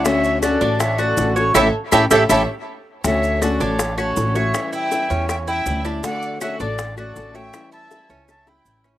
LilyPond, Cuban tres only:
\new Staff \with { instrumentName = "Cuban tres" } { \time 4/4 \key d \major \tempo 4 = 160 r4 fis'8 d'4 fis'4 cis''8 | <e' g' a'>8 r8 <e' g' a'>8 <e' g' a'>8 <e' g' a'>8 r4. | r4 fis'8 d'4 fis'4 cis''8~ | cis''8 e'4 cis'4 e'4 d'8 |
r4 fis'8 d'4 fis'4 cis''8~ | cis''8 e'4 cis'4 e'4 cis'8 | }